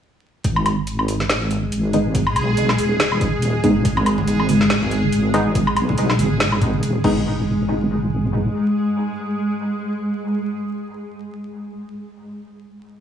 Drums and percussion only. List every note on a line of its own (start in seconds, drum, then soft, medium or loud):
0.44 kick loud
0.44 closed hi-hat medium
0.56 low woodblock medium
0.66 closed hi-hat medium
0.66 low woodblock medium
0.87 closed hi-hat medium
0.99 low woodblock medium
1.08 open hi-hat loud
1.20 snare soft
1.30 snare loud
1.30 closed hi-hat medium
1.51 closed hi-hat medium
1.72 closed hi-hat medium
1.93 closed hi-hat medium
2.15 kick loud
2.15 closed hi-hat medium
2.27 low woodblock medium
2.36 closed hi-hat medium
2.36 low woodblock medium
2.57 closed hi-hat medium
2.69 snare soft
2.69 low woodblock medium
2.78 open hi-hat loud
3.00 snare loud
3.00 closed hi-hat medium
3.12 low woodblock medium
3.21 kick loud
3.21 closed hi-hat medium
3.42 closed hi-hat medium
3.64 kick medium
3.64 closed hi-hat medium
3.85 kick loud
3.85 closed hi-hat medium
3.97 low conga medium
3.97 low woodblock medium
4.06 closed hi-hat medium
4.06 low woodblock medium
4.18 high conga medium
4.18 low conga loud
4.27 closed hi-hat medium
4.40 low woodblock medium
4.49 open hi-hat loud
4.49 high conga loud
4.61 snare soft
4.70 snare loud
4.70 closed hi-hat medium
4.83 low conga loud
4.91 closed hi-hat medium
5.02 high conga medium
5.12 closed hi-hat medium
5.34 closed hi-hat medium
5.55 kick loud
5.55 closed hi-hat medium
5.67 low woodblock medium
5.76 closed hi-hat medium
5.76 low woodblock medium
5.89 high conga medium
5.89 low conga medium
5.98 closed hi-hat medium
6.10 snare soft
6.10 low woodblock medium
6.19 open hi-hat medium
6.19 high conga medium
6.40 snare loud
6.40 closed hi-hat medium
6.52 low woodblock medium
6.62 kick loud
6.62 closed hi-hat medium
6.73 high conga medium
6.83 closed hi-hat medium
7.04 kick loud
7.04 crash medium